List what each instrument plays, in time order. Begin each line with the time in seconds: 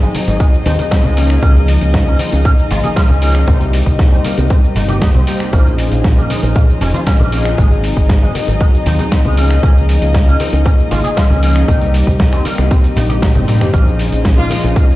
Already playing: analog polysynth F#3 C4 D#4 G#4, violin section D#4 D#5
0.02 clean electric guitar G#3, shaker
0.15 clean electric guitar F#3, muted fingered electric bass stroke, open hi-hat, high bongo, high conga, shaker
0.28 fingered electric bass G#1, clean electric guitar G#2, closed hi-hat, high bongo, shaker
0.40 clean electric guitar G#3, kick, closed hi-hat, shaker
0.54 shaker
0.66 fingered electric bass D#2, clean electric guitar C4, open hi-hat, low conga, shaker
0.79 clean electric guitar D#4, closed hi-hat, high bongo, high conga, shaker
0.91 clean electric guitar C4, kick, snare, closed hi-hat, shaker
1.04 fingered electric bass C#2, clean electric guitar G#3, low conga, shaker
1.16 analog polysynth F3 A#3 C#4 D#4 G#4, clean electric guitar C#4, open hi-hat, shaker
1.30 clean electric guitar C#3, finger snap, closed hi-hat, shaker
1.41 fingered electric bass C#2, analog polysynth F3 A#3 D#4 G#4, clean electric guitar C#4, kick, closed hi-hat, high conga, shaker
1.56 shaker
1.68 open hi-hat, shaker
1.81 fingered electric bass C#2, closed hi-hat, shaker
1.94 kick, snare, closed hi-hat, shaker
2.07 clean electric guitar C#4, shaker
2.19 clean electric guitar C4, open hi-hat, high bongo, high conga, shaker
2.32 fingered electric bass C#2, clean electric guitar C#3, closed hi-hat, high bongo, shaker
2.45 clean electric guitar C#4, kick, closed hi-hat, shaker
2.59 shaker
2.71 fingered electric bass G#1, clean electric guitar F4, open hi-hat, low conga, shaker
2.84 clean electric guitar G#4, closed hi-hat, high conga, shaker
2.96 clean electric guitar F4, kick, snare, closed hi-hat, shaker
3.09 fingered electric bass C#2, clean electric guitar C#4, low conga, shaker
3.21 analog polysynth F3 A#3 C#4 D#4 G#4, clean electric guitar C#4, open hi-hat, shaker
3.35 clean electric guitar C#3, finger snap, closed hi-hat, shaker
3.47 fingered electric bass C2, analog polysynth G3 A#3 C4 D#4 G4, clean electric guitar C4, kick, closed hi-hat, high conga, shaker
3.61 closed hi-hat, shaker
3.73 open hi-hat, shaker
3.86 fingered electric bass C2, kick, closed hi-hat, shaker
3.99 kick, snare, closed hi-hat, shaker
4.12 clean electric guitar C4, shaker
4.24 clean electric guitar A#3, open hi-hat, high bongo, high conga, shaker
4.38 fingered electric bass C2, clean electric guitar C3, closed hi-hat, high bongo, shaker
4.50 clean electric guitar C4, kick, closed hi-hat, shaker
4.64 shaker
4.75 fingered electric bass G1, clean electric guitar D#4, open hi-hat, low conga, shaker
4.88 clean electric guitar G4, closed hi-hat, high bongo, high conga, shaker
5.01 clean electric guitar D#4, kick, snare, closed hi-hat, shaker
5.15 fingered electric bass C2, clean electric guitar C4, low conga, shaker
5.27 analog polysynth G3 A#3 C4 D#4 G4, clean electric guitar C4, open hi-hat, shaker
5.40 clean electric guitar C3, finger snap, closed hi-hat, shaker
5.52 fingered electric bass A#1, analog polysynth F3 C#4 D#4 G#4 C5, clean electric guitar A#3, violin section D#4 D#5, kick, closed hi-hat, high conga, shaker
5.66 shaker
5.78 open hi-hat, shaker
5.92 fingered electric bass A#1, closed hi-hat, shaker
6.04 kick, snare, closed hi-hat, shaker
6.18 clean electric guitar A#3, shaker
6.30 clean electric guitar G#3, open hi-hat, high bongo, high conga, shaker
6.43 fingered electric bass A#1, clean electric guitar A#2, closed hi-hat, high bongo, shaker
6.56 clean electric guitar A#3, kick, closed hi-hat, shaker
6.69 shaker
6.81 fingered electric bass F1, clean electric guitar C#4, open hi-hat, low conga, shaker
6.94 clean electric guitar F4, closed hi-hat, high conga, shaker
7.07 clean electric guitar C#4, kick, snare, closed hi-hat, shaker
7.20 fingered electric bass A#1, clean electric guitar A#3, low conga, shaker
7.32 analog polysynth F3 C4 C#4 D#4 G#4, clean electric guitar A#3, open hi-hat, shaker
7.45 clean electric guitar A#2, finger snap, closed hi-hat, shaker
7.57 fingered electric bass G#1, analog polysynth F#3 C4 D#4 G#4, clean electric guitar G#3, kick, closed hi-hat, high conga, shaker
7.72 shaker
7.84 open hi-hat, shaker
7.97 fingered electric bass G#1, kick, closed hi-hat, shaker
8.09 kick, snare, closed hi-hat, shaker
8.22 clean electric guitar G#3, shaker
8.35 clean electric guitar F#3, muted fingered electric bass stroke, open hi-hat, high bongo, high conga, shaker
8.47 fingered electric bass G#1, clean electric guitar G#2, closed hi-hat, high bongo, shaker
8.61 clean electric guitar G#3, kick, closed hi-hat, shaker
8.74 shaker
8.86 fingered electric bass D#2, clean electric guitar C4, open hi-hat, low conga, shaker
8.99 clean electric guitar D#4, closed hi-hat, high bongo, high conga, shaker
9.12 clean electric guitar C4, kick, snare, closed hi-hat, shaker
9.25 fingered electric bass C#2, clean electric guitar G#3, low conga, shaker
9.37 analog polysynth F3 A#3 C#4 D#4 G#4, clean electric guitar C#4, open hi-hat, shaker
9.51 clean electric guitar C#3, finger snap, closed hi-hat, shaker
9.62 fingered electric bass C#2, analog polysynth F3 A#3 D#4 G#4, clean electric guitar C#4, kick, closed hi-hat, high conga, shaker
9.77 shaker
9.89 open hi-hat, shaker
10.02 fingered electric bass C#2, closed hi-hat, shaker
10.14 kick, snare, closed hi-hat, shaker
10.27 clean electric guitar C#4, shaker
10.40 clean electric guitar C4, open hi-hat, high bongo, high conga, shaker
10.53 fingered electric bass C#2, clean electric guitar C#3, closed hi-hat, high bongo, shaker
10.65 clean electric guitar C#4, kick, closed hi-hat, shaker
10.79 shaker
10.91 fingered electric bass G#1, clean electric guitar F4, open hi-hat, low conga, shaker
11.04 clean electric guitar G#4, closed hi-hat, high conga, shaker
11.17 clean electric guitar F4, kick, snare, closed hi-hat, shaker
11.30 fingered electric bass C#2, clean electric guitar C#4, low conga, shaker
11.42 analog polysynth F3 A#3 C#4 D#4 G#4, clean electric guitar C#4, open hi-hat, shaker
11.55 clean electric guitar C#3, finger snap, closed hi-hat, shaker
11.67 fingered electric bass C2, analog polysynth G3 A#3 C4 D#4 G4, clean electric guitar C4, kick, closed hi-hat, high conga, shaker
11.82 closed hi-hat, shaker
11.94 open hi-hat, shaker
12.07 fingered electric bass C2, kick, closed hi-hat, shaker
12.20 kick, snare, closed hi-hat, shaker
12.33 clean electric guitar C4, finger snap, closed hi-hat, shaker
12.45 clean electric guitar A#3, muted fingered electric bass stroke, open hi-hat, high bongo, high conga, shaker
12.58 fingered electric bass C2, clean electric guitar C3, finger snap, closed hi-hat, high bongo, shaker
12.71 clean electric guitar C4, kick, closed hi-hat, shaker
12.84 closed hi-hat, shaker
12.96 fingered electric bass A#1, clean electric guitar D#4, open hi-hat, low conga, shaker
13.09 clean electric guitar G4, closed hi-hat, high bongo, high conga, shaker
13.22 clean electric guitar D#4, kick, snare, closed hi-hat, shaker
13.35 fingered electric bass G1, clean electric guitar C4, high tom, low conga, shaker
13.47 analog polysynth G3 A#3 C4 D#4 G4, clean electric guitar C4, open hi-hat, mid tom, shaker
13.61 clean electric guitar C3, finger snap, closed hi-hat, mid tom, shaker
13.72 fingered electric bass A#1, analog polysynth F3 C#4 D#4 G#4 C5, clean electric guitar A#3, violin section D#4 D#5, kick, closed hi-hat, high conga, shaker
13.87 shaker
13.99 open hi-hat, shaker
14.12 fingered electric bass A#1, closed hi-hat, shaker
14.25 kick, snare, closed hi-hat, shaker
14.38 clean electric guitar A#3, violin section F4, shaker
14.50 clean electric guitar G#3, open hi-hat, high bongo, high conga, shaker
14.63 fingered electric bass A#1, clean electric guitar A#2, closed hi-hat, high bongo, shaker
14.76 clean electric guitar A#3, kick, closed hi-hat, shaker
14.90 shaker